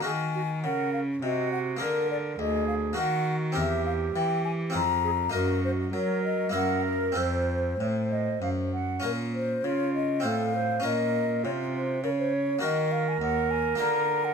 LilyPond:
<<
  \new Staff \with { instrumentName = "Flute" } { \time 3/4 \key bes \minor \tempo 4 = 101 aes''4 ges''8 f''8 ees''8 ges''8 | bes'8 d''8 ees''8 f''8 ges''8. r16 | e''8 f''8 g''8 aes''8 bes''4 | bes'8 c''8 des''8 ees''8 ges''8 bes'8 |
c''2~ c''8 r8 | bes'8 c''8 des''8 ees''8 f''4 | ees''4 des''8 c''8 bes'16 c''16 des''8 | ees''8 f''16 aes''16 ges''8 aes''8 bes''8. ges''16 | }
  \new Staff \with { instrumentName = "Flute" } { \time 3/4 \key bes \minor aes'8 ges'8 bes'8 r8 ges'4 | bes'4 aes'4 ges'4 | g'2 f'8 aes'8 | ges'4 bes'4 bes'4 |
c''4 des''8 ees''8 f''8 ges''8 | r4 f'4 a'8 c''8 | bes'4 f'4 des''4 | bes'2. | }
  \new Staff \with { instrumentName = "Harpsichord" } { \time 3/4 \key bes \minor <bes ges' bes'>2. | <bes aes' bes'>2 <bes ges' bes'>4 | <c' g' bes'>2 <c' f' aes'>4 | <bes ees' bes'>2 <bes fes' bes'>4 |
<c' f' a'>2. | <des' f' bes'>2 <c' f' c''>4 | <des' f' bes'>2. | <bes ges' bes'>2 <bes f' bes'>4 | }
  \new Staff \with { instrumentName = "Harpsichord" } { \clef bass \time 3/4 \key bes \minor ees4 des4 c4 | d4 d,4 ees4 | e,4 e4 f,4 | ges,4 ges4 ges,4 |
f,4 a,4 ges,4 | bes,4 des4 a,4 | bes,4 c4 des4 | ees4 ees,4 d4 | }
  \new Staff \with { instrumentName = "Cello" } { \clef bass \time 3/4 \key bes \minor ees4 des4 c4 | d4 d,4 ees4 | e,4 e4 f,4 | ges,4 ges4 ges,4 |
f,4 a,4 ges,4 | bes,4 des4 a,4 | bes,4 c4 des4 | ees4 ees,4 d4 | }
>>